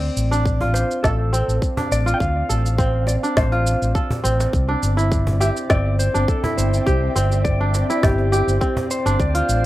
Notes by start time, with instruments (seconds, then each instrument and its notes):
Already playing: kora C4, ambient pad C5, electric slide guitar D5
0.11 ambient pad D5
0.17 fretless electric bass A1, shaker
0.31 kora D4, shaker
0.46 kick, shaker
0.61 kora F4, cajon bass
0.74 electric slide guitar C5, cajon slap, shaker
0.83 ambient pad F5
0.91 shaker
1.03 fretless electric bass A1, electric slide guitar A4, kora A4, kick, snare, shaker
1.33 kora C4, shaker
1.48 fretless electric bass A1, shaker
1.62 kick, shaker
1.77 kora D4, cajon bass, cajon slap
1.91 fretless electric bass A1, electric slide guitar D5, shaker
2.06 kora F4, shaker
2.14 electric slide guitar G5
2.20 fretless electric bass D2, electric slide guitar F5, kick, shaker
2.49 fretless electric bass A1, kora A4, shaker
2.66 shaker
2.78 kora C4, kick, shaker
3.07 electric slide guitar D5, cajon slap, shaker
3.23 kora D4, shaker
3.37 fretless electric bass A1, electric slide guitar C5, cajon bass, kick, snare, shaker
3.52 kora F4, cajon slap
3.67 shaker
3.82 fretless electric bass A1, shaker
3.95 kora A4, kick, shaker
4.10 cajon bass, cajon slap
4.24 fretless electric bass A1, kora C4, shaker
4.40 cajon slap, shaker
4.53 fretless electric bass C2, ambient pad C4, kick, shaker
4.69 kora D4
4.83 fretless electric bass G1, shaker
4.88 ambient pad G5
4.97 kora E4, shaker
5.12 kick, shaker
5.27 cajon bass
5.40 kora G4, electric slide guitar E5, cajon slap, shaker
5.57 shaker
5.70 fretless electric bass G1, kora C4, electric slide guitar D5, ambient pad E5, kick, snare, shaker
5.99 electric slide guitar C5, shaker
6.14 fretless electric bass G1, kora D4, shaker
6.28 electric slide guitar A4, kick, shaker
6.44 kora E4, cajon bass, cajon slap
6.57 fretless electric bass G1, electric slide guitar C5, shaker
6.74 shaker
6.86 fretless electric bass C2, kora G4, kick, shaker
7.16 fretless electric bass G1, kora C4, shaker
7.32 shaker
7.44 electric slide guitar D5, kick, shaker
7.61 kora D4
7.74 cajon slap, shaker
7.90 kora E4, shaker
8.03 fretless electric bass G1, electric slide guitar G4, kick, cajon bass, snare, shaker
8.18 cajon slap
8.32 kora G4, shaker
8.48 fretless electric bass G1, shaker
8.61 kora C4, kick, shaker
8.77 cajon bass, cajon slap
8.91 electric slide guitar C5, shaker
9.06 fretless electric bass G1, kora D4, cajon slap, shaker
9.19 fretless electric bass D2, synth texture C5, electric slide guitar D5, kick, shaker
9.35 kora F4, open hi-hat
9.49 fretless electric bass A1, shaker